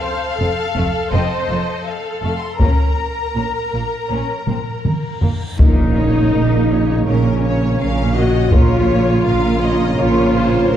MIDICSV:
0, 0, Header, 1, 11, 480
1, 0, Start_track
1, 0, Key_signature, -5, "minor"
1, 0, Tempo, 728155
1, 1227, Tempo, 744417
1, 1707, Time_signature, 4, 2, 24, 8
1, 4107, Tempo, 730816
1, 7023, End_track
2, 0, Start_track
2, 0, Title_t, "Violin section"
2, 0, Program_c, 0, 48
2, 0, Note_on_c, 0, 77, 84
2, 728, Note_off_c, 0, 77, 0
2, 742, Note_on_c, 0, 75, 61
2, 1217, Note_off_c, 0, 75, 0
2, 1222, Note_on_c, 0, 77, 52
2, 1452, Note_off_c, 0, 77, 0
2, 1459, Note_on_c, 0, 77, 45
2, 1580, Note_off_c, 0, 77, 0
2, 1580, Note_on_c, 0, 84, 50
2, 1698, Note_on_c, 0, 82, 55
2, 1704, Note_off_c, 0, 84, 0
2, 3362, Note_off_c, 0, 82, 0
2, 3630, Note_on_c, 0, 70, 45
2, 3853, Note_off_c, 0, 70, 0
2, 3870, Note_on_c, 0, 73, 42
2, 4108, Note_off_c, 0, 73, 0
2, 4109, Note_on_c, 0, 70, 39
2, 4350, Note_off_c, 0, 70, 0
2, 4357, Note_on_c, 0, 73, 40
2, 4592, Note_on_c, 0, 70, 43
2, 4594, Note_off_c, 0, 73, 0
2, 4815, Note_off_c, 0, 70, 0
2, 4844, Note_on_c, 0, 73, 45
2, 5077, Note_off_c, 0, 73, 0
2, 5087, Note_on_c, 0, 70, 46
2, 5317, Note_off_c, 0, 70, 0
2, 5331, Note_on_c, 0, 73, 44
2, 5559, Note_off_c, 0, 73, 0
2, 5562, Note_on_c, 0, 70, 50
2, 5778, Note_off_c, 0, 70, 0
2, 5804, Note_on_c, 0, 73, 52
2, 6034, Note_off_c, 0, 73, 0
2, 6038, Note_on_c, 0, 70, 53
2, 6269, Note_on_c, 0, 73, 47
2, 6271, Note_off_c, 0, 70, 0
2, 6503, Note_on_c, 0, 70, 56
2, 6506, Note_off_c, 0, 73, 0
2, 6728, Note_off_c, 0, 70, 0
2, 6745, Note_on_c, 0, 73, 52
2, 6987, Note_off_c, 0, 73, 0
2, 6990, Note_on_c, 0, 70, 54
2, 7023, Note_off_c, 0, 70, 0
2, 7023, End_track
3, 0, Start_track
3, 0, Title_t, "Viola section"
3, 0, Program_c, 1, 48
3, 18, Note_on_c, 1, 72, 57
3, 258, Note_on_c, 1, 69, 54
3, 260, Note_off_c, 1, 72, 0
3, 489, Note_off_c, 1, 69, 0
3, 497, Note_on_c, 1, 69, 55
3, 734, Note_on_c, 1, 72, 58
3, 740, Note_off_c, 1, 69, 0
3, 1213, Note_off_c, 1, 72, 0
3, 1222, Note_on_c, 1, 69, 48
3, 1695, Note_off_c, 1, 69, 0
3, 1705, Note_on_c, 1, 70, 39
3, 3391, Note_off_c, 1, 70, 0
3, 3630, Note_on_c, 1, 63, 67
3, 4563, Note_off_c, 1, 63, 0
3, 4592, Note_on_c, 1, 61, 54
3, 5295, Note_off_c, 1, 61, 0
3, 5305, Note_on_c, 1, 66, 61
3, 5544, Note_on_c, 1, 65, 66
3, 5546, Note_off_c, 1, 66, 0
3, 6483, Note_off_c, 1, 65, 0
3, 6502, Note_on_c, 1, 65, 77
3, 6977, Note_off_c, 1, 65, 0
3, 6985, Note_on_c, 1, 70, 83
3, 7023, Note_off_c, 1, 70, 0
3, 7023, End_track
4, 0, Start_track
4, 0, Title_t, "French horn section"
4, 0, Program_c, 2, 60
4, 3625, Note_on_c, 2, 63, 81
4, 4560, Note_off_c, 2, 63, 0
4, 4579, Note_on_c, 2, 61, 66
4, 5303, Note_off_c, 2, 61, 0
4, 5304, Note_on_c, 2, 66, 73
4, 5532, Note_on_c, 2, 65, 75
4, 5541, Note_off_c, 2, 66, 0
4, 6496, Note_off_c, 2, 65, 0
4, 6505, Note_on_c, 2, 65, 85
4, 6978, Note_off_c, 2, 65, 0
4, 6982, Note_on_c, 2, 70, 90
4, 7023, Note_off_c, 2, 70, 0
4, 7023, End_track
5, 0, Start_track
5, 0, Title_t, "Violin section"
5, 0, Program_c, 3, 48
5, 0, Note_on_c, 3, 69, 56
5, 266, Note_on_c, 3, 60, 38
5, 319, Note_off_c, 3, 60, 0
5, 504, Note_on_c, 3, 57, 40
5, 557, Note_off_c, 3, 57, 0
5, 734, Note_on_c, 3, 60, 55
5, 963, Note_off_c, 3, 60, 0
5, 980, Note_on_c, 3, 58, 36
5, 1032, Note_off_c, 3, 58, 0
5, 1465, Note_on_c, 3, 57, 35
5, 1517, Note_off_c, 3, 57, 0
5, 1680, Note_off_c, 3, 69, 0
5, 1707, Note_on_c, 3, 61, 45
5, 1711, Note_on_c, 3, 70, 38
5, 1932, Note_off_c, 3, 61, 0
5, 2196, Note_on_c, 3, 61, 28
5, 2248, Note_off_c, 3, 61, 0
5, 2437, Note_on_c, 3, 58, 30
5, 2488, Note_off_c, 3, 58, 0
5, 2672, Note_on_c, 3, 61, 38
5, 2895, Note_off_c, 3, 61, 0
5, 2919, Note_on_c, 3, 60, 26
5, 2971, Note_off_c, 3, 60, 0
5, 3395, Note_on_c, 3, 58, 34
5, 3447, Note_off_c, 3, 58, 0
5, 3478, Note_off_c, 3, 70, 0
5, 4592, Note_on_c, 3, 70, 51
5, 4814, Note_off_c, 3, 70, 0
5, 4839, Note_on_c, 3, 73, 55
5, 5069, Note_off_c, 3, 73, 0
5, 5079, Note_on_c, 3, 77, 61
5, 5309, Note_off_c, 3, 77, 0
5, 5316, Note_on_c, 3, 75, 61
5, 5552, Note_off_c, 3, 75, 0
5, 5553, Note_on_c, 3, 73, 64
5, 6028, Note_on_c, 3, 77, 67
5, 6029, Note_off_c, 3, 73, 0
5, 6261, Note_off_c, 3, 77, 0
5, 6272, Note_on_c, 3, 75, 64
5, 6508, Note_off_c, 3, 75, 0
5, 6510, Note_on_c, 3, 73, 69
5, 6748, Note_off_c, 3, 73, 0
5, 6752, Note_on_c, 3, 72, 69
5, 7023, Note_off_c, 3, 72, 0
5, 7023, End_track
6, 0, Start_track
6, 0, Title_t, "Trombone section"
6, 0, Program_c, 4, 61
6, 3627, Note_on_c, 4, 49, 50
6, 3628, Note_on_c, 4, 58, 46
6, 5519, Note_off_c, 4, 49, 0
6, 5519, Note_off_c, 4, 58, 0
6, 5548, Note_on_c, 4, 58, 61
6, 5549, Note_on_c, 4, 49, 60
6, 7023, Note_off_c, 4, 49, 0
6, 7023, Note_off_c, 4, 58, 0
6, 7023, End_track
7, 0, Start_track
7, 0, Title_t, "Cello section"
7, 0, Program_c, 5, 48
7, 266, Note_on_c, 5, 41, 40
7, 319, Note_off_c, 5, 41, 0
7, 506, Note_on_c, 5, 41, 44
7, 559, Note_off_c, 5, 41, 0
7, 746, Note_on_c, 5, 41, 59
7, 799, Note_off_c, 5, 41, 0
7, 990, Note_on_c, 5, 41, 40
7, 1042, Note_off_c, 5, 41, 0
7, 1468, Note_on_c, 5, 41, 33
7, 1520, Note_off_c, 5, 41, 0
7, 1708, Note_on_c, 5, 46, 47
7, 1760, Note_off_c, 5, 46, 0
7, 2192, Note_on_c, 5, 46, 28
7, 2243, Note_off_c, 5, 46, 0
7, 2430, Note_on_c, 5, 46, 29
7, 2482, Note_off_c, 5, 46, 0
7, 2670, Note_on_c, 5, 46, 38
7, 2722, Note_off_c, 5, 46, 0
7, 2912, Note_on_c, 5, 46, 30
7, 2964, Note_off_c, 5, 46, 0
7, 3392, Note_on_c, 5, 46, 31
7, 3444, Note_off_c, 5, 46, 0
7, 3637, Note_on_c, 5, 46, 54
7, 4054, Note_off_c, 5, 46, 0
7, 4112, Note_on_c, 5, 46, 51
7, 4536, Note_off_c, 5, 46, 0
7, 4592, Note_on_c, 5, 46, 53
7, 5014, Note_off_c, 5, 46, 0
7, 5073, Note_on_c, 5, 46, 58
7, 5493, Note_off_c, 5, 46, 0
7, 5548, Note_on_c, 5, 46, 67
7, 5969, Note_off_c, 5, 46, 0
7, 6027, Note_on_c, 5, 46, 62
7, 6448, Note_off_c, 5, 46, 0
7, 6502, Note_on_c, 5, 46, 71
7, 6930, Note_off_c, 5, 46, 0
7, 6983, Note_on_c, 5, 46, 65
7, 7023, Note_off_c, 5, 46, 0
7, 7023, End_track
8, 0, Start_track
8, 0, Title_t, "Double bass section"
8, 0, Program_c, 6, 48
8, 261, Note_on_c, 6, 29, 44
8, 314, Note_off_c, 6, 29, 0
8, 499, Note_on_c, 6, 29, 46
8, 552, Note_off_c, 6, 29, 0
8, 741, Note_on_c, 6, 29, 55
8, 794, Note_off_c, 6, 29, 0
8, 982, Note_on_c, 6, 29, 37
8, 1035, Note_off_c, 6, 29, 0
8, 1465, Note_on_c, 6, 29, 34
8, 1516, Note_off_c, 6, 29, 0
8, 1710, Note_on_c, 6, 34, 42
8, 1761, Note_off_c, 6, 34, 0
8, 2189, Note_on_c, 6, 34, 28
8, 2241, Note_off_c, 6, 34, 0
8, 2432, Note_on_c, 6, 34, 31
8, 2484, Note_off_c, 6, 34, 0
8, 2673, Note_on_c, 6, 34, 41
8, 2725, Note_off_c, 6, 34, 0
8, 2915, Note_on_c, 6, 34, 26
8, 2967, Note_off_c, 6, 34, 0
8, 3394, Note_on_c, 6, 34, 30
8, 3446, Note_off_c, 6, 34, 0
8, 3631, Note_on_c, 6, 34, 55
8, 4052, Note_off_c, 6, 34, 0
8, 4109, Note_on_c, 6, 34, 53
8, 4534, Note_off_c, 6, 34, 0
8, 4586, Note_on_c, 6, 34, 55
8, 5011, Note_off_c, 6, 34, 0
8, 5068, Note_on_c, 6, 34, 59
8, 5491, Note_off_c, 6, 34, 0
8, 5549, Note_on_c, 6, 34, 64
8, 5970, Note_off_c, 6, 34, 0
8, 6023, Note_on_c, 6, 34, 68
8, 6446, Note_off_c, 6, 34, 0
8, 6504, Note_on_c, 6, 34, 67
8, 6931, Note_off_c, 6, 34, 0
8, 6989, Note_on_c, 6, 34, 70
8, 7023, Note_off_c, 6, 34, 0
8, 7023, End_track
9, 0, Start_track
9, 0, Title_t, "Impact"
9, 0, Program_c, 7, 103
9, 3632, Note_on_c, 7, 60, 56
9, 5547, Note_off_c, 7, 60, 0
9, 7023, End_track
10, 0, Start_track
10, 0, Title_t, "Reverse cymbal"
10, 0, Program_c, 8, 119
10, 1705, Note_on_c, 8, 60, 39
10, 3632, Note_off_c, 8, 60, 0
10, 7023, End_track
11, 0, Start_track
11, 0, Title_t, "Taiko and cinematic ensemble drums"
11, 504, Note_on_c, 9, 41, 33
11, 570, Note_off_c, 9, 41, 0
11, 1707, Note_on_c, 9, 41, 75
11, 1772, Note_off_c, 9, 41, 0
11, 2912, Note_on_c, 9, 45, 60
11, 2976, Note_off_c, 9, 45, 0
11, 3153, Note_on_c, 9, 47, 63
11, 3218, Note_off_c, 9, 47, 0
11, 3392, Note_on_c, 9, 43, 72
11, 3457, Note_off_c, 9, 43, 0
11, 3633, Note_on_c, 9, 41, 82
11, 3697, Note_off_c, 9, 41, 0
11, 5546, Note_on_c, 9, 41, 84
11, 5612, Note_off_c, 9, 41, 0
11, 7023, End_track
0, 0, End_of_file